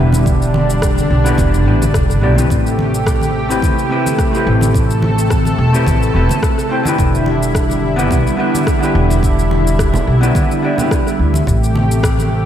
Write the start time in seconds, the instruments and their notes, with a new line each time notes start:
Already playing: upright bass E1, analog synth pad D3 G3 E4, hollow-body jazz guitar B3 D4 E4 G4 B4
0.12 high conga, shaker
0.26 analog synth pad D4, kick, shaker
0.42 shaker
0.54 high conga
0.70 shaker
0.82 kick, cross-stick, shaker
0.98 high conga, shaker
1.10 upright bass B1
1.24 hollow-body jazz guitar B3 D4 E4 G4 B4, shaker
1.38 upright bass E1, kick, high conga, shaker
1.54 shaker
1.65 upright bass A1, hollow-body jazz guitar B3 D4 E4 G4 B4
1.82 high conga, low conga, shaker
1.94 upright bass E1, kick, cross-stick, shaker
2.10 cross-stick, shaker
2.21 upright bass B1, hollow-body jazz guitar B3 D4 E4 G4 D5
2.35 hollow-body jazz guitar A3 C4 E4, high conga, shaker
2.39 hollow-body jazz guitar G4 B4
2.50 upright bass A1, analog synth pad C3 A3 G4, kick, shaker
2.67 shaker
2.79 high conga
2.94 shaker
3.06 kick, cross-stick, shaker
3.21 high conga, shaker
3.49 hollow-body jazz guitar A3 C4 E4 G4 B4, shaker
3.62 upright bass E1, kick, high conga, shaker
3.79 shaker
3.89 hollow-body jazz guitar A3 C4 E4 G4 B4
4.06 high conga, shaker
4.18 kick, cross-stick, shaker
4.31 hollow-body jazz guitar A3 C4 E4, shaker
4.36 hollow-body jazz guitar G4 B4
4.47 upright bass A1
4.61 high conga, shaker
4.74 analog synth pad A4, kick, shaker
4.90 shaker
5.02 high conga
5.19 shaker
5.30 kick, cross-stick, shaker
5.45 high conga, shaker
5.58 upright bass E1
5.73 hollow-body jazz guitar A3 C4 E4 G4 B4, shaker
5.87 upright bass A1, kick, high conga, shaker
6.03 shaker
6.13 upright bass E1, hollow-body jazz guitar A3 C4 E4 G4 B4
6.29 high conga, low conga, shaker
6.43 kick, cross-stick, shaker
6.58 cross-stick, shaker
6.69 hollow-body jazz guitar A3 C4 E4 G4 C5
6.83 hollow-body jazz guitar B3 D4 E4, high conga, shaker
6.87 hollow-body jazz guitar G4 B4
6.98 upright bass E1, analog synth pad D3 G3 E4, kick, shaker
7.15 shaker
7.26 high conga
7.43 shaker
7.55 kick, cross-stick, shaker
7.70 high conga, shaker
7.96 hollow-body jazz guitar B3 D4 E4 G4 B4, shaker
8.11 upright bass B1, kick, high conga, shaker
8.27 shaker
8.37 hollow-body jazz guitar B3 D4 E4 G4 B4
8.55 high conga, shaker
8.67 kick, cross-stick, shaker
8.79 hollow-body jazz guitar B3 D4 E4
8.83 hollow-body jazz guitar G4 B4, shaker
8.95 upright bass E1
9.10 high conga, shaker
9.23 kick, shaker
9.39 shaker
9.51 high conga
9.67 shaker
9.79 kick, cross-stick, shaker
9.94 high conga, low conga, shaker
10.07 upright bass B1
10.21 hollow-body jazz guitar B3 D4 E4 G4 B4, shaker
10.35 kick, high conga, shaker
10.51 shaker
10.62 hollow-body jazz guitar B3 D4 E4 G4 D5
10.76 hollow-body jazz guitar B3 D4 E4, high conga, low conga, shaker
10.80 hollow-body jazz guitar G4 B4
10.91 kick, cross-stick, shaker
11.07 cross-stick, shaker
11.19 upright bass D2
11.34 high conga, shaker
11.47 upright bass A1, analog synth pad C3 A3 G4, kick, shaker
11.64 shaker
11.75 high conga
11.91 shaker
12.03 kick, cross-stick, shaker
12.19 high conga, shaker